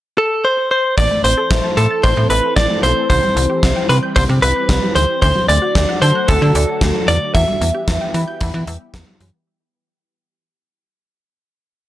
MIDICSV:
0, 0, Header, 1, 6, 480
1, 0, Start_track
1, 0, Tempo, 530973
1, 882, Time_signature, 4, 2, 24, 8
1, 10741, End_track
2, 0, Start_track
2, 0, Title_t, "Clean electric guitar"
2, 0, Program_c, 0, 27
2, 164, Note_on_c, 0, 69, 76
2, 403, Note_on_c, 0, 72, 83
2, 410, Note_off_c, 0, 69, 0
2, 633, Note_off_c, 0, 72, 0
2, 643, Note_on_c, 0, 72, 83
2, 879, Note_off_c, 0, 72, 0
2, 883, Note_on_c, 0, 74, 92
2, 1106, Note_off_c, 0, 74, 0
2, 1122, Note_on_c, 0, 72, 85
2, 1600, Note_on_c, 0, 69, 76
2, 1616, Note_off_c, 0, 72, 0
2, 1839, Note_on_c, 0, 72, 83
2, 1849, Note_off_c, 0, 69, 0
2, 2074, Note_off_c, 0, 72, 0
2, 2078, Note_on_c, 0, 71, 82
2, 2314, Note_off_c, 0, 71, 0
2, 2318, Note_on_c, 0, 74, 91
2, 2555, Note_off_c, 0, 74, 0
2, 2559, Note_on_c, 0, 72, 85
2, 2788, Note_off_c, 0, 72, 0
2, 2799, Note_on_c, 0, 72, 92
2, 3516, Note_off_c, 0, 72, 0
2, 3520, Note_on_c, 0, 71, 82
2, 3585, Note_off_c, 0, 71, 0
2, 3759, Note_on_c, 0, 72, 89
2, 3824, Note_off_c, 0, 72, 0
2, 3999, Note_on_c, 0, 71, 90
2, 4475, Note_off_c, 0, 71, 0
2, 4479, Note_on_c, 0, 72, 91
2, 4707, Note_off_c, 0, 72, 0
2, 4718, Note_on_c, 0, 72, 95
2, 4955, Note_off_c, 0, 72, 0
2, 4958, Note_on_c, 0, 74, 101
2, 5436, Note_off_c, 0, 74, 0
2, 5439, Note_on_c, 0, 72, 87
2, 5679, Note_on_c, 0, 69, 83
2, 5688, Note_off_c, 0, 72, 0
2, 6401, Note_on_c, 0, 74, 96
2, 6423, Note_off_c, 0, 69, 0
2, 6637, Note_off_c, 0, 74, 0
2, 6640, Note_on_c, 0, 76, 100
2, 8045, Note_off_c, 0, 76, 0
2, 10741, End_track
3, 0, Start_track
3, 0, Title_t, "Synth arpeggio sound"
3, 0, Program_c, 1, 84
3, 883, Note_on_c, 1, 52, 87
3, 996, Note_off_c, 1, 52, 0
3, 1003, Note_on_c, 1, 57, 74
3, 1116, Note_off_c, 1, 57, 0
3, 1123, Note_on_c, 1, 60, 75
3, 1236, Note_off_c, 1, 60, 0
3, 1243, Note_on_c, 1, 69, 93
3, 1356, Note_off_c, 1, 69, 0
3, 1362, Note_on_c, 1, 76, 84
3, 1476, Note_off_c, 1, 76, 0
3, 1482, Note_on_c, 1, 81, 83
3, 1595, Note_off_c, 1, 81, 0
3, 1602, Note_on_c, 1, 84, 101
3, 1715, Note_off_c, 1, 84, 0
3, 1722, Note_on_c, 1, 93, 86
3, 1835, Note_off_c, 1, 93, 0
3, 1841, Note_on_c, 1, 84, 91
3, 1955, Note_off_c, 1, 84, 0
3, 2082, Note_on_c, 1, 76, 81
3, 2195, Note_off_c, 1, 76, 0
3, 2322, Note_on_c, 1, 60, 89
3, 2435, Note_off_c, 1, 60, 0
3, 2442, Note_on_c, 1, 57, 74
3, 2555, Note_off_c, 1, 57, 0
3, 2561, Note_on_c, 1, 52, 72
3, 2675, Note_off_c, 1, 52, 0
3, 2802, Note_on_c, 1, 52, 86
3, 2915, Note_off_c, 1, 52, 0
3, 2922, Note_on_c, 1, 55, 75
3, 3035, Note_off_c, 1, 55, 0
3, 3041, Note_on_c, 1, 60, 75
3, 3155, Note_off_c, 1, 60, 0
3, 3161, Note_on_c, 1, 67, 97
3, 3275, Note_off_c, 1, 67, 0
3, 3281, Note_on_c, 1, 76, 84
3, 3395, Note_off_c, 1, 76, 0
3, 3401, Note_on_c, 1, 79, 90
3, 3515, Note_off_c, 1, 79, 0
3, 3520, Note_on_c, 1, 84, 107
3, 3635, Note_off_c, 1, 84, 0
3, 3640, Note_on_c, 1, 91, 88
3, 3754, Note_off_c, 1, 91, 0
3, 3761, Note_on_c, 1, 84, 88
3, 3875, Note_off_c, 1, 84, 0
3, 4001, Note_on_c, 1, 76, 83
3, 4115, Note_off_c, 1, 76, 0
3, 4242, Note_on_c, 1, 60, 92
3, 4355, Note_off_c, 1, 60, 0
3, 4362, Note_on_c, 1, 55, 75
3, 4475, Note_off_c, 1, 55, 0
3, 4481, Note_on_c, 1, 52, 74
3, 4595, Note_off_c, 1, 52, 0
3, 4722, Note_on_c, 1, 50, 87
3, 4835, Note_off_c, 1, 50, 0
3, 4841, Note_on_c, 1, 54, 74
3, 4955, Note_off_c, 1, 54, 0
3, 4960, Note_on_c, 1, 57, 78
3, 5075, Note_off_c, 1, 57, 0
3, 5080, Note_on_c, 1, 66, 94
3, 5194, Note_off_c, 1, 66, 0
3, 5201, Note_on_c, 1, 74, 83
3, 5315, Note_off_c, 1, 74, 0
3, 5321, Note_on_c, 1, 78, 87
3, 5435, Note_off_c, 1, 78, 0
3, 5440, Note_on_c, 1, 81, 107
3, 5555, Note_off_c, 1, 81, 0
3, 5561, Note_on_c, 1, 90, 93
3, 5675, Note_off_c, 1, 90, 0
3, 5681, Note_on_c, 1, 81, 90
3, 5795, Note_off_c, 1, 81, 0
3, 5922, Note_on_c, 1, 74, 84
3, 6035, Note_off_c, 1, 74, 0
3, 6160, Note_on_c, 1, 57, 93
3, 6274, Note_off_c, 1, 57, 0
3, 6281, Note_on_c, 1, 54, 76
3, 6395, Note_off_c, 1, 54, 0
3, 6401, Note_on_c, 1, 50, 73
3, 6515, Note_off_c, 1, 50, 0
3, 6642, Note_on_c, 1, 52, 87
3, 6755, Note_off_c, 1, 52, 0
3, 6762, Note_on_c, 1, 55, 76
3, 6875, Note_off_c, 1, 55, 0
3, 6882, Note_on_c, 1, 59, 77
3, 6995, Note_off_c, 1, 59, 0
3, 7002, Note_on_c, 1, 67, 99
3, 7115, Note_off_c, 1, 67, 0
3, 7122, Note_on_c, 1, 76, 85
3, 7235, Note_off_c, 1, 76, 0
3, 7241, Note_on_c, 1, 79, 87
3, 7355, Note_off_c, 1, 79, 0
3, 7362, Note_on_c, 1, 83, 102
3, 7475, Note_off_c, 1, 83, 0
3, 7481, Note_on_c, 1, 91, 90
3, 7595, Note_off_c, 1, 91, 0
3, 7601, Note_on_c, 1, 83, 89
3, 7715, Note_off_c, 1, 83, 0
3, 7841, Note_on_c, 1, 76, 81
3, 7955, Note_off_c, 1, 76, 0
3, 8081, Note_on_c, 1, 59, 89
3, 8195, Note_off_c, 1, 59, 0
3, 8201, Note_on_c, 1, 55, 78
3, 8315, Note_off_c, 1, 55, 0
3, 8321, Note_on_c, 1, 52, 74
3, 8435, Note_off_c, 1, 52, 0
3, 10741, End_track
4, 0, Start_track
4, 0, Title_t, "String machine"
4, 0, Program_c, 2, 50
4, 882, Note_on_c, 2, 57, 77
4, 882, Note_on_c, 2, 60, 76
4, 883, Note_on_c, 2, 52, 82
4, 883, Note_on_c, 2, 69, 89
4, 2783, Note_off_c, 2, 57, 0
4, 2783, Note_off_c, 2, 69, 0
4, 2802, Note_on_c, 2, 55, 74
4, 2802, Note_on_c, 2, 67, 93
4, 4686, Note_off_c, 2, 52, 0
4, 4686, Note_off_c, 2, 60, 0
4, 4703, Note_off_c, 2, 55, 0
4, 4703, Note_off_c, 2, 67, 0
4, 4721, Note_on_c, 2, 54, 77
4, 4721, Note_on_c, 2, 57, 78
4, 4722, Note_on_c, 2, 50, 82
4, 4722, Note_on_c, 2, 66, 92
4, 6623, Note_off_c, 2, 50, 0
4, 6623, Note_off_c, 2, 54, 0
4, 6623, Note_off_c, 2, 57, 0
4, 6623, Note_off_c, 2, 66, 0
4, 6641, Note_on_c, 2, 55, 76
4, 6641, Note_on_c, 2, 59, 73
4, 6641, Note_on_c, 2, 67, 95
4, 6642, Note_on_c, 2, 52, 84
4, 8542, Note_off_c, 2, 55, 0
4, 8543, Note_off_c, 2, 52, 0
4, 8543, Note_off_c, 2, 59, 0
4, 8543, Note_off_c, 2, 67, 0
4, 10741, End_track
5, 0, Start_track
5, 0, Title_t, "FM bass"
5, 0, Program_c, 3, 39
5, 882, Note_on_c, 3, 33, 106
5, 977, Note_off_c, 3, 33, 0
5, 1123, Note_on_c, 3, 33, 98
5, 1218, Note_off_c, 3, 33, 0
5, 1362, Note_on_c, 3, 33, 94
5, 1457, Note_off_c, 3, 33, 0
5, 1603, Note_on_c, 3, 45, 91
5, 1698, Note_off_c, 3, 45, 0
5, 1844, Note_on_c, 3, 33, 110
5, 1938, Note_off_c, 3, 33, 0
5, 1962, Note_on_c, 3, 45, 92
5, 2057, Note_off_c, 3, 45, 0
5, 2082, Note_on_c, 3, 33, 99
5, 2177, Note_off_c, 3, 33, 0
5, 2320, Note_on_c, 3, 33, 98
5, 2416, Note_off_c, 3, 33, 0
5, 2561, Note_on_c, 3, 35, 94
5, 2657, Note_off_c, 3, 35, 0
5, 2802, Note_on_c, 3, 36, 104
5, 2897, Note_off_c, 3, 36, 0
5, 3041, Note_on_c, 3, 36, 97
5, 3136, Note_off_c, 3, 36, 0
5, 3282, Note_on_c, 3, 36, 96
5, 3377, Note_off_c, 3, 36, 0
5, 3522, Note_on_c, 3, 48, 92
5, 3617, Note_off_c, 3, 48, 0
5, 3764, Note_on_c, 3, 36, 108
5, 3858, Note_off_c, 3, 36, 0
5, 3881, Note_on_c, 3, 48, 101
5, 3977, Note_off_c, 3, 48, 0
5, 4002, Note_on_c, 3, 36, 86
5, 4097, Note_off_c, 3, 36, 0
5, 4239, Note_on_c, 3, 36, 93
5, 4336, Note_off_c, 3, 36, 0
5, 4482, Note_on_c, 3, 38, 82
5, 4577, Note_off_c, 3, 38, 0
5, 4722, Note_on_c, 3, 38, 106
5, 4817, Note_off_c, 3, 38, 0
5, 4961, Note_on_c, 3, 38, 104
5, 5057, Note_off_c, 3, 38, 0
5, 5201, Note_on_c, 3, 38, 100
5, 5297, Note_off_c, 3, 38, 0
5, 5443, Note_on_c, 3, 50, 95
5, 5538, Note_off_c, 3, 50, 0
5, 5684, Note_on_c, 3, 38, 105
5, 5778, Note_off_c, 3, 38, 0
5, 5802, Note_on_c, 3, 50, 100
5, 5897, Note_off_c, 3, 50, 0
5, 5922, Note_on_c, 3, 38, 103
5, 6017, Note_off_c, 3, 38, 0
5, 6160, Note_on_c, 3, 38, 97
5, 6256, Note_off_c, 3, 38, 0
5, 6403, Note_on_c, 3, 40, 85
5, 6498, Note_off_c, 3, 40, 0
5, 6642, Note_on_c, 3, 40, 104
5, 6737, Note_off_c, 3, 40, 0
5, 6881, Note_on_c, 3, 40, 93
5, 6977, Note_off_c, 3, 40, 0
5, 7121, Note_on_c, 3, 40, 92
5, 7217, Note_off_c, 3, 40, 0
5, 7361, Note_on_c, 3, 52, 107
5, 7457, Note_off_c, 3, 52, 0
5, 7604, Note_on_c, 3, 40, 103
5, 7698, Note_off_c, 3, 40, 0
5, 7721, Note_on_c, 3, 52, 98
5, 7816, Note_off_c, 3, 52, 0
5, 7842, Note_on_c, 3, 40, 103
5, 7937, Note_off_c, 3, 40, 0
5, 8079, Note_on_c, 3, 40, 84
5, 8175, Note_off_c, 3, 40, 0
5, 8322, Note_on_c, 3, 42, 89
5, 8417, Note_off_c, 3, 42, 0
5, 10741, End_track
6, 0, Start_track
6, 0, Title_t, "Drums"
6, 882, Note_on_c, 9, 36, 99
6, 882, Note_on_c, 9, 42, 69
6, 973, Note_off_c, 9, 36, 0
6, 973, Note_off_c, 9, 42, 0
6, 1125, Note_on_c, 9, 42, 73
6, 1216, Note_off_c, 9, 42, 0
6, 1362, Note_on_c, 9, 36, 113
6, 1362, Note_on_c, 9, 38, 104
6, 1363, Note_on_c, 9, 42, 65
6, 1452, Note_off_c, 9, 36, 0
6, 1452, Note_off_c, 9, 38, 0
6, 1453, Note_off_c, 9, 42, 0
6, 1603, Note_on_c, 9, 42, 70
6, 1693, Note_off_c, 9, 42, 0
6, 1839, Note_on_c, 9, 42, 70
6, 1844, Note_on_c, 9, 36, 115
6, 1930, Note_off_c, 9, 42, 0
6, 1934, Note_off_c, 9, 36, 0
6, 2081, Note_on_c, 9, 42, 70
6, 2171, Note_off_c, 9, 42, 0
6, 2319, Note_on_c, 9, 36, 111
6, 2321, Note_on_c, 9, 38, 102
6, 2321, Note_on_c, 9, 42, 62
6, 2410, Note_off_c, 9, 36, 0
6, 2411, Note_off_c, 9, 38, 0
6, 2412, Note_off_c, 9, 42, 0
6, 2561, Note_on_c, 9, 42, 75
6, 2652, Note_off_c, 9, 42, 0
6, 2801, Note_on_c, 9, 42, 67
6, 2802, Note_on_c, 9, 36, 99
6, 2891, Note_off_c, 9, 42, 0
6, 2892, Note_off_c, 9, 36, 0
6, 3045, Note_on_c, 9, 42, 72
6, 3135, Note_off_c, 9, 42, 0
6, 3281, Note_on_c, 9, 36, 107
6, 3281, Note_on_c, 9, 38, 110
6, 3282, Note_on_c, 9, 42, 67
6, 3372, Note_off_c, 9, 36, 0
6, 3372, Note_off_c, 9, 38, 0
6, 3372, Note_off_c, 9, 42, 0
6, 3522, Note_on_c, 9, 42, 70
6, 3612, Note_off_c, 9, 42, 0
6, 3759, Note_on_c, 9, 42, 72
6, 3764, Note_on_c, 9, 36, 114
6, 3850, Note_off_c, 9, 42, 0
6, 3854, Note_off_c, 9, 36, 0
6, 4002, Note_on_c, 9, 42, 71
6, 4092, Note_off_c, 9, 42, 0
6, 4239, Note_on_c, 9, 36, 113
6, 4241, Note_on_c, 9, 38, 103
6, 4241, Note_on_c, 9, 42, 63
6, 4330, Note_off_c, 9, 36, 0
6, 4331, Note_off_c, 9, 38, 0
6, 4332, Note_off_c, 9, 42, 0
6, 4482, Note_on_c, 9, 42, 75
6, 4572, Note_off_c, 9, 42, 0
6, 4721, Note_on_c, 9, 42, 66
6, 4722, Note_on_c, 9, 36, 99
6, 4812, Note_off_c, 9, 36, 0
6, 4812, Note_off_c, 9, 42, 0
6, 4965, Note_on_c, 9, 42, 71
6, 5055, Note_off_c, 9, 42, 0
6, 5201, Note_on_c, 9, 36, 114
6, 5201, Note_on_c, 9, 38, 106
6, 5202, Note_on_c, 9, 42, 68
6, 5292, Note_off_c, 9, 36, 0
6, 5292, Note_off_c, 9, 38, 0
6, 5292, Note_off_c, 9, 42, 0
6, 5442, Note_on_c, 9, 42, 73
6, 5532, Note_off_c, 9, 42, 0
6, 5679, Note_on_c, 9, 42, 72
6, 5684, Note_on_c, 9, 36, 117
6, 5770, Note_off_c, 9, 42, 0
6, 5774, Note_off_c, 9, 36, 0
6, 5921, Note_on_c, 9, 42, 70
6, 6012, Note_off_c, 9, 42, 0
6, 6159, Note_on_c, 9, 36, 115
6, 6161, Note_on_c, 9, 38, 101
6, 6161, Note_on_c, 9, 42, 62
6, 6250, Note_off_c, 9, 36, 0
6, 6251, Note_off_c, 9, 38, 0
6, 6252, Note_off_c, 9, 42, 0
6, 6401, Note_on_c, 9, 42, 72
6, 6492, Note_off_c, 9, 42, 0
6, 6641, Note_on_c, 9, 36, 101
6, 6641, Note_on_c, 9, 42, 65
6, 6731, Note_off_c, 9, 42, 0
6, 6732, Note_off_c, 9, 36, 0
6, 6885, Note_on_c, 9, 42, 75
6, 6975, Note_off_c, 9, 42, 0
6, 7121, Note_on_c, 9, 36, 112
6, 7121, Note_on_c, 9, 38, 104
6, 7122, Note_on_c, 9, 42, 69
6, 7211, Note_off_c, 9, 36, 0
6, 7212, Note_off_c, 9, 38, 0
6, 7212, Note_off_c, 9, 42, 0
6, 7362, Note_on_c, 9, 42, 72
6, 7452, Note_off_c, 9, 42, 0
6, 7599, Note_on_c, 9, 42, 73
6, 7604, Note_on_c, 9, 36, 116
6, 7689, Note_off_c, 9, 42, 0
6, 7694, Note_off_c, 9, 36, 0
6, 7841, Note_on_c, 9, 42, 69
6, 7932, Note_off_c, 9, 42, 0
6, 8079, Note_on_c, 9, 36, 114
6, 8080, Note_on_c, 9, 38, 103
6, 8081, Note_on_c, 9, 42, 64
6, 8170, Note_off_c, 9, 36, 0
6, 8171, Note_off_c, 9, 38, 0
6, 8171, Note_off_c, 9, 42, 0
6, 8321, Note_on_c, 9, 42, 73
6, 8411, Note_off_c, 9, 42, 0
6, 10741, End_track
0, 0, End_of_file